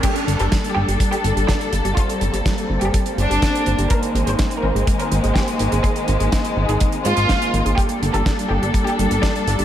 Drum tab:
CC |x---------------|----------------|----------------|----------------|
HH |xxxxxx-xxxxxxxxx|xxxxxx-xxxxxxxxx|xxxxxx-xxxxxxxxx|xxxxxx-xxxxxxxxx|
SD |----o-------o---|----o-------o---|----o-------o---|----o-------o---|
BD |o---o---o---o---|o---o---o---o---|o---o---o---o---|o---o---o---o---|

CC |----------------|
HH |xxxxxx-xxxxxxxxx|
SD |----o-------o---|
BD |o---o---o---o---|